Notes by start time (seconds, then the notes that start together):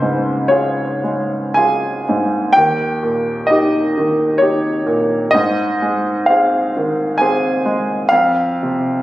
Already playing: C#2 C5
0.02 G#2
0.48 F4 G#4 C#5
1.04 G#3
1.54 F4 G#4 G#5
2.09 G#2
2.53 D#2 G5
3.03 A#2
3.47 D#4 G4 D#5
3.98 D#3
4.38 D#4 G4 C#5
4.86 A#2
5.31 G#2 D#5
5.82 G#3
6.26 C4 G#4 F5
6.77 D#3
7.18 C4 G#4 G#5
7.66 G#3
8.09 F2 F5
8.63 C3